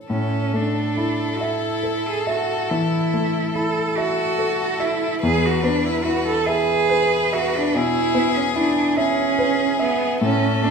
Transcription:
Already playing: C#5
0.07 A2 C#4 A4
0.54 A3 D4
0.97 E4
1.36 F#4
1.41 E4 E5
1.83 A4
2.07 G#4
2.27 F#4 E5
2.70 E3 E4
3.14 A3
3.53 E4 A4
3.96 F#4 A4 E5
4.38 A4
4.80 E4 E5
5.22 E2 G#4 B4
5.45 F#4
5.63 B3 D4
5.85 E4
6.04 E4 F#4
6.26 A4
6.45 G#4 B4 E5
6.89 B4
7.32 F#4 E5
7.57 D4
7.75 B2 E4 G#4
8.15 B3
8.36 C#4
8.55 D4 E4
8.97 C#4 G#4 E5
9.39 B4
9.79 B3 E5
10.21 A2 C#4 A4
10.63 A3 D4

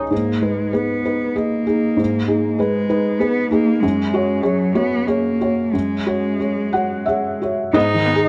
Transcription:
Already playing: C#2 G#2 D#4 G#4 C#5 D#5 G#5
0.11 G#2 A#3
0.41 G#3 D#4 B4
0.73 B3 G#4 B4
1.05 D#4 B4
1.36 A#3 G#4 D#5
1.66 D#4 G#4
1.97 G#2
2.28 D#4 G#4
2.59 G#3 G#4 B4
2.89 D#4 B4
3.20 B3 G#4 B4
3.51 A#3 D#4 G#4
3.81 F#2 G#3
4.14 F#4 C#5
4.43 F#3 G#4 C#5
4.75 B3 F#4 C#5
5.07 A#3 G#4 C#5
5.41 F#4 C#5
5.73 F#2 G#3
6.06 F#4 C#5
6.40 G#4 C#5
6.73 F#4 C#5 F#5
7.06 G#4 C#5 E5
7.42 F#4 C#5
7.73 G#2 B3 D#4 D#5
7.94 D#3
8.05 B3
8.15 G#4

